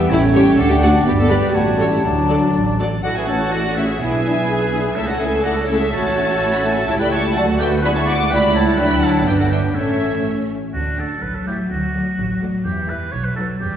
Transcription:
Already playing: cello section B3, bassoon B3, oboe E5, flute G5
0.09 double bass section A1, french horn section G3 C#4, bassoon A3, cello section C#4, violin section E4, oboe C#5
0.34 viola section A3 G4, violin section G4 C#5
0.57 double bass section D2, french horn section A3 D4, cello section D4, violin section A4, oboe D5, flute F#5
0.70 violin section G4
0.82 viola section A3 F#4, violin section F#4 D5
1.06 double bass section G1, bassoon G3, cello section B3, french horn section B3 D4, violin section G4, flute B5
1.19 violin section A4
1.30 viola section G3 B4, violin section G4 D5
1.53 double bass section A1, french horn section G3 C#4, cello section A3, violin section F#4, oboe C#5, flute A5
1.78 viola section G3 A4, violin section C#5
1.91 violin section E4
2.03 double bass section D2, french horn section F#3 D4, cello section F#3, bassoon F#3, violin section D4, oboe D5
2.29 viola section F#3 A4, violin section D5
2.55 double bass section A1
2.79 viola section F#3 A4, violin section D5
3.04 double bass section A1, viola section A3 E4, cello section F#4, oboe F#4, flute A4, violin section D5 F#5
3.17 viola section C#4 A4, oboe G#4, flute B4, violin section E5 G#5
3.28 french horn section E3 C#4, viola section A3 E4, oboe A4, flute C#5, violin section F#5 A5
3.40 viola section C#4 A4
3.52 viola section A3 E4, oboe F#4, flute A4, violin section D5 F#5
3.64 viola section C#4 A4
3.75 french horn section E3 C#4, viola section A3 E4, oboe E4, flute G#4, violin section C#5 E5
3.89 viola section C#4 A4
3.99 double bass section B1, viola section B3 E4, cello section E4, oboe G#4, flute B4, violin section E5 G#5
4.12 viola section D4 G#4
4.24 french horn section E3 D4, viola section B3 E4
4.37 viola section D4 G#4
4.48 viola section B3 E4, cello section G#4
4.61 viola section D4 G#4
4.73 french horn section E3 D4, viola section B3 E4
4.86 viola section D4 G#4
4.95 double bass section C#2, viola section A3 E4, oboe E4, cello section A4, flute A4, violin section C#5 E5
5.06 viola section C#4 A4, oboe F#4, flute A4, violin section D5 F#5
5.18 french horn section A3 C#4, viola section A3 E4, oboe G#4, flute B4, violin section E5 G#5
5.33 viola section C#4 A4
5.43 viola section A3 E4, oboe F#4, flute A4, violin section D5 F#5
5.58 viola section C#4 A4
5.67 french horn section A3 C#4, viola section A3 E4, oboe E4, flute G#4, violin section C#5 E5
5.82 viola section C#4 A4
5.93 double bass section A1, viola section A3 E4, cello section F#4, oboe A4, flute C#5, violin section E5 A5
6.06 viola section C#4 A4
6.17 french horn section A3 C#4, viola section A3 E4
6.30 viola section C#4 A4
6.42 viola section A3 E4
6.54 viola section C#4 A4, violin section B5
6.63 french horn section A3 C#4, viola section A3 E4, violin section A5
6.71 violin section G#5
6.77 viola section C#4 A4, violin section A5
6.87 double bass section C#2, viola section G3 G4, french horn section A3 G4, cello section E4, oboe A4, flute C#5, violin section E5 A5
7.00 viola section A3 A4, oboe B4, flute D5, violin section G5 B5
7.11 viola section G3 G4, oboe C#5, flute E5, violin section A5 C#6
7.25 viola section A3 A4
7.34 double bass section D2, viola section F#3 F#4, cello section F#4, french horn section F#4, oboe A4, flute D5, violin section F#5 A5
7.47 viola section A3 A4
7.59 viola section F#3 F#4, oboe G4, flute B4, violin section E5 G5
7.71 viola section A3 A4
7.82 french horn section G#3 E4, viola section B3 E4, cello section F#4, oboe B4, flute D5, violin section G#5 B5
7.94 viola section G#3 D4, oboe C#5, flute E5, violin section A5 C#6
8.05 viola section B3 E4, oboe D5, flute F#5, violin section B5
8.10 violin section D6
8.19 viola section G#3 D4
8.29 double bass section C#2, french horn section G3, viola section A3 E4, cello section E4, oboe B4, flute D5, violin section G5 B5
8.42 viola section G3 C#4
8.53 viola section A3 E4, oboe A4, flute C#5, violin section F#5 A5
8.66 viola section G3 C#4
8.76 double bass section D2, french horn section F#3 D4, viola section F#3 D4, oboe B4, flute D5, violin section G5 B5
9.02 oboe A4, flute C#5, violin section F#5 A5
9.24 double bass section G1, french horn section B3, viola section B3 D4, cello section D4, oboe G4, flute B4, violin section D5 G5
9.38 oboe F#4, flute A4, violin section D5 F#5
9.51 oboe G4, flute B4, violin section E5 G5
9.74 double bass section A1, viola section A3 C#4, french horn section A3 C#4, cello section C#4, oboe E4, flute A4, violin section C#5 E5
10.74 double bass section D2, cello section D4, oboe F#4
10.99 viola section A3, violin section F#4 D5, oboe A4
11.22 double bass section A1, cello section F#3, oboe B4
11.35 oboe A4
11.47 viola section A3, violin section E4 C#5, oboe G4
11.70 double bass section D2, oboe F#4
11.95 viola section A3, violin section F#4 D5
12.19 double bass section A1
12.42 viola section A3, violin section F#4 D5
12.65 double bass section E2, cello section E3, oboe G4
12.89 viola section G3, violin section E4 B4, oboe B4
13.12 double bass section B1, cello section F#3, oboe C#5
13.25 oboe B4
13.36 viola section F#3, violin section D#4 B4, oboe A4
13.60 double bass section E2, cello section G3, oboe G4

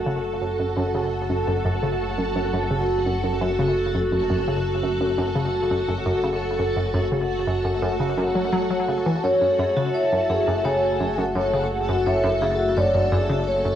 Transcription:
Already playing: analog synth bass F#1, synth texture A3 C#5, string machine F#4 A4
0.06 synth arpeggio sound C#3
0.42 synth arpeggio sound F#2
0.59 synth arpeggio sound F#2
0.77 synth arpeggio sound F#2
0.95 synth arpeggio sound C#3
1.30 synth arpeggio sound F#2
1.47 synth arpeggio sound F#2
1.65 synth arpeggio sound F#2
1.83 synth arpeggio sound C#3
2.18 synth arpeggio sound F#2
2.36 synth arpeggio sound F#2
2.53 synth arpeggio sound F#2
2.71 synth arpeggio sound C#3
3.06 synth arpeggio sound F#2
3.24 synth arpeggio sound F#2
3.41 synth arpeggio sound F#2
3.59 synth arpeggio sound C#3
3.95 synth arpeggio sound F#2
4.12 synth arpeggio sound F#2
4.30 synth arpeggio sound F#2
4.48 synth arpeggio sound C#3
4.83 synth arpeggio sound F#2
5.01 synth arpeggio sound F#2
5.18 synth arpeggio sound F#2
5.35 synth arpeggio sound C#3
5.71 synth arpeggio sound F#2
5.88 synth arpeggio sound F#2
6.06 synth arpeggio sound F#2
6.24 synth arpeggio sound C#3
6.59 synth arpeggio sound F#2
6.76 synth arpeggio sound F#2
6.94 synth arpeggio sound F#2
7.12 synth arpeggio sound C#3
7.47 synth arpeggio sound F#2
7.65 synth arpeggio sound F#2
7.82 synth arpeggio sound F#2
8.00 synth arpeggio sound C#3
8.17 synth arpeggio sound F#2
8.35 synth arpeggio sound F#3
8.53 synth arpeggio sound F#3
8.70 synth arpeggio sound F#3
8.88 synth arpeggio sound C#3
9.06 synth arpeggio sound E3
9.23 analog synth bass F#1, synth arpeggio sound F#2, string machine A4, soft synth lead C#5, vibraphone C#5, synth texture E5
9.41 synth arpeggio sound F#2, vibraphone A4
9.59 synth arpeggio sound F#2, vibraphone G#4
9.77 synth arpeggio sound C#3, vibraphone F#4
9.94 vibraphone C#5, soft synth lead E5
10.12 synth arpeggio sound F#2, vibraphone A4
10.30 synth arpeggio sound F#2, vibraphone G#4
10.47 synth arpeggio sound F#2, vibraphone F#4
10.65 synth arpeggio sound C#3, vibraphone C#5, soft synth lead G#5
10.83 vibraphone A4
11.00 synth arpeggio sound F#2, vibraphone G#4
11.18 synth arpeggio sound F#2, vibraphone F#4, soft synth lead F#5
11.35 synth arpeggio sound F#2, vibraphone C#5
11.53 synth arpeggio sound C#3, vibraphone A4
11.71 vibraphone G#4
11.88 synth arpeggio sound F#2, vibraphone F#4
12.06 synth arpeggio sound F#2, vibraphone C#5, soft synth lead E5
12.24 synth arpeggio sound F#2, vibraphone A4
12.41 synth arpeggio sound C#3, vibraphone G#4
12.59 vibraphone F#4
12.77 synth arpeggio sound F#2, vibraphone C#5, soft synth lead D5
12.94 synth arpeggio sound F#2, vibraphone A4
13.12 synth arpeggio sound F#2, vibraphone G#4
13.30 synth arpeggio sound C#3, vibraphone F#4
13.47 vibraphone C#5, soft synth lead C#5
13.65 synth arpeggio sound F#2, vibraphone A4

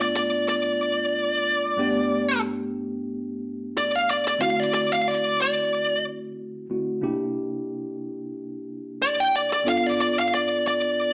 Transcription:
Already playing: tine electric piano G2 A3 B3 D4 F4
0.02 lead electric guitar D5
0.17 lead electric guitar D5
0.49 lead electric guitar D5
1.77 tine electric piano G2 A3 B3 D4 G4
3.78 lead electric guitar D5
3.96 lead electric guitar F5
4.11 lead electric guitar D5
4.28 lead electric guitar D5
4.38 tine electric piano D3 A3 C4 E4 F#4, lead electric guitar F5
4.60 lead electric guitar D5
4.74 lead electric guitar D5
4.93 lead electric guitar F5
5.08 lead electric guitar D5
5.42 lead electric guitar D5
6.70 tine electric piano D3 A3 C4 E4 F#4
7.01 tine electric piano C3 A#3 D4 E4 G4
9.02 lead electric guitar D5
9.20 lead electric guitar G5
9.36 lead electric guitar D5
9.53 lead electric guitar D5
9.64 tine electric piano G2 B3 D4 F4 A4
9.69 lead electric guitar F5
9.86 lead electric guitar D5
10.01 lead electric guitar D5
10.19 lead electric guitar F5
10.35 lead electric guitar D5
10.68 lead electric guitar D5

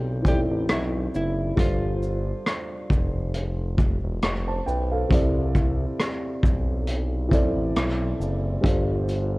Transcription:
Already playing: analog synth bass B1, upright piano C3 C4 E4 A4 D5, hollow-body jazz guitar G4
0.23 upright piano E3 C4 D#4, kick, closed hi-hat, shaker
0.27 hollow-body jazz guitar G4, upright piano A4 D5
0.31 upright piano E4
0.51 analog synth bass A1
0.69 analog synth bass B1, hollow-body jazz guitar E4, cross-stick, closed hi-hat
1.15 analog synth bass F#1, hollow-body jazz guitar E4, shaker
1.56 analog synth bass G1, upright piano G3 D4 F4 A4, kick, closed hi-hat
1.60 hollow-body jazz guitar F4, upright piano C5
2.03 shaker
2.46 cross-stick, closed hi-hat
2.90 analog synth bass F1, kick, shaker
3.34 closed hi-hat
3.78 kick, shaker
4.03 analog synth bass E1
4.22 analog synth bass F1, cross-stick, closed hi-hat
4.48 upright piano C5 A5
4.66 analog synth bass B1, upright piano B4 G5, shaker
4.91 upright piano A4 F5
5.08 analog synth bass C2, upright piano C3 C4 E4, kick, closed hi-hat
5.13 upright piano A4 D5
5.55 kick, shaker
6.00 cross-stick, closed hi-hat
6.43 analog synth bass B1, kick, shaker
6.87 closed hi-hat
7.29 upright piano E3 C4 E4, kick
7.33 upright piano A4 D5, closed hi-hat, shaker
7.56 analog synth bass A1
7.76 analog synth bass B1, cross-stick, closed hi-hat
8.20 analog synth bass F#1, shaker
8.61 analog synth bass G1, upright piano G3 D4 F4, kick
8.65 upright piano A4 C5, closed hi-hat
9.08 closed hi-hat, shaker

